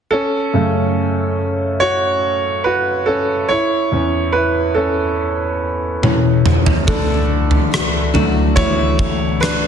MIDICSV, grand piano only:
0, 0, Header, 1, 2, 480
1, 0, Start_track
1, 0, Key_signature, 3, "minor"
1, 0, Tempo, 845070
1, 67, Time_signature, 4, 2, 24, 8
1, 5494, End_track
2, 0, Start_track
2, 0, Title_t, "Grand piano"
2, 0, Program_c, 0, 0
2, 60, Note_on_c, 0, 69, 75
2, 74, Note_on_c, 0, 61, 60
2, 185, Control_c, 0, 64, 127
2, 303, Note_on_c, 0, 42, 41
2, 307, Note_on_c, 0, 49, 40
2, 309, Note_on_c, 0, 57, 41
2, 761, Note_off_c, 0, 69, 0
2, 767, Note_off_c, 0, 61, 0
2, 1022, Note_on_c, 0, 73, 88
2, 1031, Note_on_c, 0, 66, 60
2, 1486, Note_off_c, 0, 66, 0
2, 1500, Note_on_c, 0, 71, 71
2, 1511, Note_on_c, 0, 66, 60
2, 1519, Note_off_c, 0, 73, 0
2, 1732, Note_off_c, 0, 66, 0
2, 1737, Note_on_c, 0, 69, 68
2, 1749, Note_on_c, 0, 61, 54
2, 1751, Note_off_c, 0, 71, 0
2, 1792, Note_off_c, 0, 69, 0
2, 1802, Note_off_c, 0, 61, 0
2, 1962, Note_off_c, 0, 42, 0
2, 1964, Note_off_c, 0, 49, 0
2, 1965, Note_off_c, 0, 57, 0
2, 1980, Note_on_c, 0, 73, 78
2, 1992, Note_on_c, 0, 64, 59
2, 1995, Control_c, 0, 64, 0
2, 2097, Control_c, 0, 64, 127
2, 2223, Note_on_c, 0, 40, 42
2, 2226, Note_on_c, 0, 52, 35
2, 2230, Note_on_c, 0, 61, 48
2, 2447, Note_off_c, 0, 64, 0
2, 2456, Note_on_c, 0, 71, 74
2, 2468, Note_on_c, 0, 64, 53
2, 2478, Note_off_c, 0, 73, 0
2, 2684, Note_off_c, 0, 71, 0
2, 2690, Note_off_c, 0, 64, 0
2, 2695, Note_on_c, 0, 69, 63
2, 2699, Note_off_c, 0, 61, 0
2, 2707, Note_on_c, 0, 61, 44
2, 3415, Note_off_c, 0, 40, 0
2, 3416, Note_off_c, 0, 52, 0
2, 3419, Note_off_c, 0, 61, 0
2, 3423, Note_on_c, 0, 40, 39
2, 3424, Note_on_c, 0, 52, 36
2, 3428, Note_on_c, 0, 61, 42
2, 3638, Note_off_c, 0, 69, 0
2, 3642, Note_off_c, 0, 40, 0
2, 3643, Note_off_c, 0, 52, 0
2, 3645, Note_off_c, 0, 61, 0
2, 3903, Note_on_c, 0, 69, 69
2, 3912, Note_on_c, 0, 62, 56
2, 3913, Control_c, 0, 64, 0
2, 3999, Control_c, 0, 64, 127
2, 4621, Note_on_c, 0, 50, 42
2, 4623, Note_on_c, 0, 54, 39
2, 4627, Note_on_c, 0, 57, 44
2, 4847, Note_off_c, 0, 62, 0
2, 4861, Note_on_c, 0, 73, 94
2, 4870, Note_on_c, 0, 64, 70
2, 4894, Note_off_c, 0, 69, 0
2, 4943, Note_off_c, 0, 50, 0
2, 4944, Note_off_c, 0, 54, 0
2, 4946, Note_off_c, 0, 57, 0
2, 5326, Note_off_c, 0, 64, 0
2, 5343, Note_on_c, 0, 71, 81
2, 5354, Note_on_c, 0, 62, 64
2, 5358, Note_off_c, 0, 73, 0
2, 5494, Note_off_c, 0, 62, 0
2, 5494, Note_off_c, 0, 71, 0
2, 5494, End_track
0, 0, End_of_file